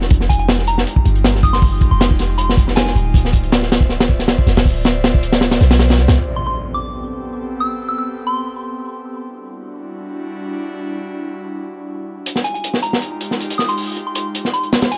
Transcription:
0.01 snare soft
0.10 0.85 F1 loud
0.10 1.03 G#3 medium
0.10 1.03 D#4 medium
0.10 1.03 F4 medium
0.10 1.03 G4 loud
0.10 kick loud
0.10 closed hi-hat medium
0.21 snare soft
0.29 0.36 G#5 medium
0.29 kick medium
0.29 closed hi-hat medium
0.39 0.45 G#5 medium
0.39 closed hi-hat soft
0.49 snare loud
0.49 closed hi-hat medium
0.58 snare soft
0.67 0.91 A#5 medium
0.67 closed hi-hat medium
0.78 snare medium
0.87 closed hi-hat medium
0.96 kick medium
1.05 1.90 G1 medium
1.05 1.60 G#3 medium
1.05 1.60 D#4 medium
1.05 1.60 F4 medium
1.05 1.60 G4 medium
1.05 closed hi-hat medium
1.15 closed hi-hat soft
1.24 snare loud
1.24 closed hi-hat medium
1.35 snare soft
1.43 1.51 D#6 medium
1.43 kick medium
1.43 closed hi-hat medium
1.53 1.76 C6 medium
1.53 snare soft
1.62 2.55 G#3 medium
1.62 2.55 D#4 medium
1.62 2.55 F4 medium
1.62 2.55 G4 loud
1.62 kick loud
1.62 open hi-hat medium
1.81 kick medium
1.81 closed hi-hat medium
1.91 2.94 F1 medium
1.91 1.97 C6 medium
2.00 2.07 C6 medium
2.00 snare loud
2.00 closed hi-hat medium
2.11 kick medium
2.19 snare soft
2.19 closed hi-hat medium
2.38 2.61 C6 medium
2.38 closed hi-hat medium
2.49 snare medium
2.57 3.12 G#3 medium
2.57 3.12 D#4 medium
2.57 3.12 F4 medium
2.57 3.12 G4 medium
2.57 kick medium
2.57 closed hi-hat medium
2.68 snare soft
2.76 3.05 G#5 medium
2.76 snare loud
2.76 closed hi-hat medium
2.86 snare medium
2.95 4.37 D1 medium
2.95 closed hi-hat medium
3.14 4.07 F4 medium
3.14 4.07 C5 medium
3.14 4.07 D5 medium
3.14 4.07 E5 loud
3.14 kick loud
3.14 closed hi-hat medium
3.25 snare soft
3.33 kick medium
3.33 closed hi-hat medium
3.43 closed hi-hat soft
3.52 snare loud
3.52 closed hi-hat medium
3.62 snare soft
3.72 snare loud
3.72 closed hi-hat medium
3.81 kick medium
3.89 snare soft
3.89 closed hi-hat medium
4.00 snare loud
4.00 closed hi-hat medium
4.09 4.64 F4 medium
4.09 4.64 C5 medium
4.09 4.64 D5 medium
4.09 4.64 E5 medium
4.09 kick medium
4.19 snare soft
4.19 closed hi-hat medium
4.28 snare medium
4.28 closed hi-hat medium
4.38 kick medium
4.47 4.56 F1 loud
4.47 snare soft
4.47 closed hi-hat medium
4.57 5.60 D1 medium
4.57 snare loud
4.57 closed hi-hat medium
4.65 5.59 F4 medium
4.65 5.59 C5 medium
4.65 5.59 D5 medium
4.65 5.59 E5 loud
4.65 kick loud
4.65 open hi-hat medium
4.85 snare loud
4.85 closed hi-hat medium
5.04 snare loud
5.04 closed hi-hat medium
5.14 kick medium
5.23 closed hi-hat medium
5.32 snare medium
5.32 closed hi-hat medium
5.41 snare loud
5.41 closed hi-hat medium
5.51 snare loud
5.51 closed hi-hat medium
5.61 6.00 B1 medium
5.61 snare soft
5.61 closed hi-hat medium
5.71 snare loud
5.71 closed hi-hat medium
5.79 snare loud
5.79 closed hi-hat medium
5.90 snare loud
5.90 closed hi-hat medium
5.98 6.08 C2 medium
5.98 snare soft
5.98 closed hi-hat medium
6.08 6.17 C2 medium
6.08 snare loud
6.08 closed hi-hat medium
6.17 9.19 B3 loud
6.17 9.19 C4 medium
6.17 9.20 G4 medium
6.17 9.19 A4 medium
6.17 impact medium
6.36 6.43 C6 medium
6.47 6.53 C6 medium
6.74 6.98 D6 medium
7.60 7.83 E6 medium
7.88 7.95 E6 medium
7.98 8.04 E6 medium
8.27 8.80 C6 medium
9.21 12.23 G3 medium
9.21 12.23 D4 medium
9.21 12.23 E4 medium
9.21 12.23 F#4 loud
12.25 14.98 G#3 medium
12.25 14.98 D#4 medium
12.25 14.98 F4 medium
12.25 14.98 G4 loud
12.25 closed hi-hat medium
12.36 snare soft
12.44 12.51 G#5 medium
12.44 closed hi-hat medium
12.54 12.60 G#5 medium
12.54 closed hi-hat soft
12.64 closed hi-hat medium
12.74 snare soft
12.82 13.06 A#5 medium
12.82 closed hi-hat medium
12.93 snare soft
13.02 closed hi-hat medium
13.21 closed hi-hat medium
13.31 snare soft
13.40 closed hi-hat medium
13.50 closed hi-hat medium
13.58 13.66 D#6 medium
13.58 snare soft
13.69 13.91 C6 medium
13.69 closed hi-hat medium
13.77 open hi-hat medium
13.97 closed hi-hat medium
14.07 14.12 C6 medium
14.15 14.22 C6 medium
14.15 closed hi-hat medium
14.35 closed hi-hat medium
14.45 snare soft
14.53 14.77 C6 medium
14.53 closed hi-hat soft
14.63 closed hi-hat soft
14.73 snare medium
14.73 closed hi-hat medium
14.82 snare loud
14.82 closed hi-hat medium
14.92 14.98 G#5 medium
14.92 closed hi-hat medium

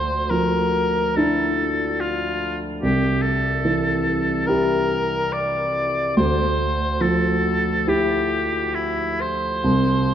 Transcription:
0.00 2.79 D2 soft
0.00 0.32 C5 medium
0.30 1.67 F3 soft
0.30 1.18 A#4 medium
1.16 2.79 D4 soft
1.16 2.80 E4 soft
1.16 2.02 A4 soft
2.00 2.57 F4 soft
2.82 6.13 C2 soft
2.82 3.23 G4 soft
3.22 4.48 A4 medium
3.65 5.00 E3 soft
4.46 6.13 E4 soft
4.46 6.13 G4 soft
4.46 5.34 A#4 soft
5.33 6.16 D5 medium
6.17 9.60 D2 soft
6.17 7.03 C5 medium
7.01 8.39 F3 soft
7.01 7.90 A4 medium
7.87 9.60 E4 soft
7.87 9.60 G4 soft
7.87 8.76 G4 medium
8.75 9.22 E4 medium
9.21 10.14 C5 medium
9.64 10.14 C2 soft

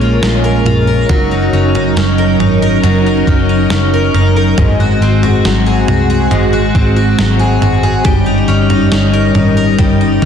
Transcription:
0.00 0.17 A#1 medium
0.00 1.18 A#2 medium
0.00 0.22 G#3 medium
0.00 1.06 G#3 medium
0.00 1.06 A#3 medium
0.00 1.06 C#4 medium
0.00 1.34 C#4 medium
0.00 0.65 F4 medium
0.00 0.44 A#4 medium
0.22 0.60 A#1 medium
0.22 1.09 G#3 medium
0.22 snare loud
0.44 0.87 A#4 medium
0.65 1.04 A#1 medium
0.65 1.18 F4 medium
0.65 floor tom medium
0.87 2.18 A#4 medium
1.09 1.48 F#1 medium
1.09 4.54 F#3 medium
1.09 2.83 F#3 medium
1.09 4.54 C#4 medium
1.09 4.54 D#4 medium
1.09 4.54 A#4 medium
1.09 kick loud
1.09 floor tom medium
1.31 1.74 D#4 soft
1.53 1.91 F#1 medium
1.53 1.95 C#4 medium
1.75 2.40 D#4 medium
1.75 floor tom medium
1.97 2.35 F#1 medium
1.97 3.26 C#4 medium
1.97 snare medium
2.18 2.61 A#4 medium
2.40 2.78 G#1 medium
2.40 3.06 D#4 medium
2.40 floor tom medium
2.62 3.92 A#4 medium
2.83 3.22 F#1 medium
2.83 5.05 F#3 medium
2.83 floor tom medium
3.06 3.49 D#4 medium
3.27 3.65 F#1 medium
3.27 3.70 C#4 soft
3.27 kick medium
3.49 4.14 D#4 medium
3.70 4.08 F#1 medium
3.70 4.67 C#4 medium
3.70 snare medium
3.94 4.35 A#4 medium
4.14 4.52 F#1 medium
4.14 4.80 D#4 medium
4.14 floor tom medium
4.36 4.66 A#4 medium
4.58 4.96 G#1 medium
4.58 6.30 G#2 medium
4.58 8.02 G#3 medium
4.58 8.03 C4 medium
4.58 8.02 F#4 medium
4.58 kick loud
4.58 floor tom medium
4.80 5.22 F#4 medium
5.01 5.39 G#1 medium
5.01 6.74 C4 medium
5.23 5.87 F#4 medium
5.23 floor tom soft
5.44 5.83 G#1 medium
5.44 7.17 F#3 medium
5.44 snare medium
5.66 6.09 G#4 medium
5.88 6.26 C2 medium
5.88 6.52 F#4 medium
5.88 floor tom medium
6.10 7.38 G#4 medium
6.31 6.70 G#1 medium
6.31 8.14 G#2 medium
6.31 floor tom medium
6.53 6.95 F#4 medium
6.75 7.13 G#1 medium
6.75 8.14 C4 medium
6.75 kick medium
6.96 7.61 F#4 medium
7.18 7.57 G#1 medium
7.18 8.04 F#3 medium
7.18 snare loud
7.39 7.82 G#4 medium
7.61 8.00 G#1 medium
7.61 8.14 F#4 medium
7.61 floor tom medium
7.83 8.14 G#4 medium
8.04 8.44 G1 medium
8.04 10.25 G3 medium
8.04 9.78 G3 medium
8.04 10.25 C#4 medium
8.04 10.25 D#4 medium
8.04 kick medium
8.04 floor tom loud
8.26 8.69 D#4 soft
8.48 8.87 G1 medium
8.48 8.91 C#4 medium
8.70 9.33 D#4 medium
8.70 floor tom medium
8.92 9.30 G1 medium
8.92 10.22 C#4 medium
8.92 snare loud
9.13 9.57 A#4 medium
9.35 9.73 G#1 medium
9.35 10.00 D#4 soft
9.35 floor tom medium
9.57 10.25 A#4 medium
9.79 10.17 G1 medium
9.79 10.25 G3 medium
9.79 kick medium
9.79 floor tom medium
10.01 10.25 D#4 medium
10.22 10.25 G1 medium
10.22 10.25 C#4 soft
10.22 kick medium

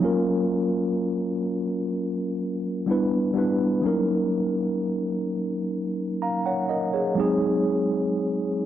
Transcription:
0.00 1.29 F#3 medium
0.00 1.30 A#3 medium
0.00 1.30 C#4 medium
0.00 1.31 F4 medium
0.05 1.31 A#4 medium
2.87 3.26 G3 medium
2.87 3.26 B3 medium
2.87 3.27 D4 medium
2.87 3.27 E4 medium
2.91 3.28 B4 medium
3.34 3.67 G3 medium
3.34 3.67 B3 medium
3.34 3.68 D4 medium
3.34 3.68 E4 medium
3.38 3.69 B4 medium
3.82 5.10 F#3 medium
3.82 5.11 A#3 medium
3.82 5.11 C#4 medium
3.82 5.12 D#4 medium
3.86 5.12 A#4 medium
6.22 6.45 F5 soft
6.22 6.45 A#5 medium
6.46 6.69 C#5 medium
6.46 6.68 F#5 medium
6.70 6.93 A#4 soft
6.70 6.92 D#5 medium
6.94 7.19 G#4 soft
6.94 7.39 C#5 medium
7.15 8.66 F#3 medium
7.15 8.66 G#3 medium
7.15 8.66 C4 medium
7.15 8.66 D#4 medium
7.20 8.66 G#4 medium

